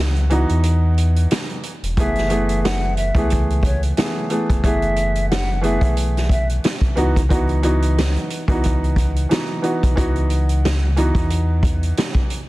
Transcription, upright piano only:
Already playing: E3 B3 D#4 F#4
0.30 E3 B3 D#4 F#4
1.97 E3 A3 B3 G#4
2.29 E3 A3 B3 G#4
3.15 E3 A3 B3 G#4
3.97 E3 A3 B3 G#4
4.29 E3 A3 B3 G#4
4.63 E3 A3 B3 G#4
5.61 E3 A3 B3 G#4
6.95 E3 B3 D#4 F#4
7.29 E3 B3 D#4 F#4
7.63 E3 B3 D#4 F#4
8.48 E3 B3 D#4 F#4
9.29 E3 B3 D#4 F#4
9.62 E3 B3 D#4 F#4
9.96 E3 B3 D#4 F#4
10.96 E3 B3 D#4 F#4

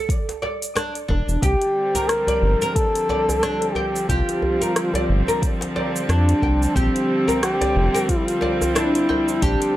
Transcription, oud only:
0.42 D5
0.76 D4
1.08 D4
1.43 G4
1.95 A#4
2.28 D5
2.62 A#4
3.10 D5
3.43 D4
3.76 G5
4.09 G4
4.61 A#4
4.95 D5
5.28 A#4
5.76 D5
6.09 D4
6.43 G5
6.76 G4
7.28 A#4
7.61 D5
7.94 A#4
8.42 D5
8.75 D4
9.09 G5
9.42 G4

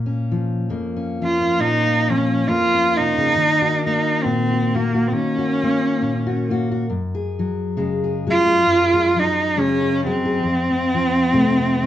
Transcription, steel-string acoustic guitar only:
Already playing: A#2
0.06 C#4
0.32 F3
0.69 F2 A#3
0.96 C#4
1.21 F3 C#4
1.41 C#4
1.59 A#2
1.87 C#4
2.09 F3
2.48 F2 A#3
2.74 C#4
2.99 C3
3.17 C#3
3.36 D#3
3.62 F#4
3.86 A#3
4.25 A#2
4.50 F#4
4.74 A#3 F#4
4.94 F#4
5.12 D#3
5.38 F#4
5.63 A#3
6.01 A#2 C#4
6.27 F#4
6.50 A#3 F#4
6.71 F#4
6.90 F#2
7.15 G#4
7.39 F#3
7.77 C#3 G#3
8.04 G#4
8.26 F#3 G#3
8.47 G#3
8.66 F#2
8.94 G#3
9.16 F#3
9.57 C#3 G#3
9.82 G#4
10.06 F#3 G#4
10.25 G#4
10.43 F2
10.70 C4
10.94 F3
11.33 C3 A3
11.59 C4
11.83 F3 A4

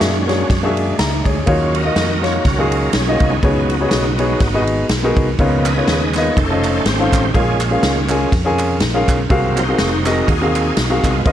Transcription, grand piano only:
Already playing: A#2 A#3 D4 F#4 G#4 E5
0.27 A#3 D4 F#4 G#4 C#5
0.63 A#3 D4 F#4 G#4 E5
0.99 E5 A#5
1.26 G#4 C#5
1.46 D#3 A#3 D#4 F4 F#4 C#5
1.85 A#3 D#4 F4 F#4 D#5
2.21 A#3 D#4 F4 F#4 C#5
2.58 A#3 D#4 F4 F#4 G#4
3.07 A#3 D#4 F4 F#4 D#5
3.43 C#3 B3 D#4 F#4 G#4 C#5
3.80 B3 D#4 F#4 G#4 C#5
4.18 B3 D#4 F#4 G#4 C#5
4.54 B3 D#4 F#4 G#4 D#5
5.03 B3 D#4 F#4 G#4 A#4
5.39 C#3 B3 D#4 F4 A#4 C#5
5.76 B3 D#4 F4 A#4 C#5
6.16 B3 D#4 F4 A#4 D#5
6.50 C#4 F4 A4 C5 D#5
6.99 C#4 F4 A4 C5 F5
7.34 A#2 C#4 F4 G#4 A#4 F5
7.71 C#4 F4 G#4 A#4 F5
8.09 C#4 F4 G#4 A#4 G#5
8.45 C#4 F4 G#4 A#4 G#5
8.94 C#4 F4 G#4 A#4 F5
9.29 C3 C4 F#4 G#4 A#4 F5
9.68 C4 F#4 G#4 A#4 F5
10.06 C4 F#4 G#4 A#4 D#5
10.41 C4 F#4 G#4 A#4 F5
10.90 C4 F#4 G#4 A#4 F5
11.25 C#3 C#4 F4 A#4 B4 D#5

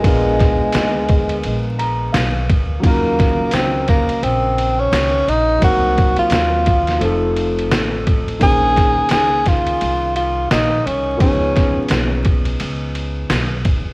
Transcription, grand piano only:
0.00 G#3 B3 D4
0.05 F4 A#4
1.79 A#5
2.12 F5
2.80 C#3 F#3 D#4
2.85 F4 A#4
5.59 F#3 A#3 C4
5.63 D#4 A#4
6.98 F3 A3 C4
7.03 D#4 A4
8.39 D#3 A#3 C#4 C5
8.45 G#4
11.17 F3 B3 C#4
11.22 D#4 G#4

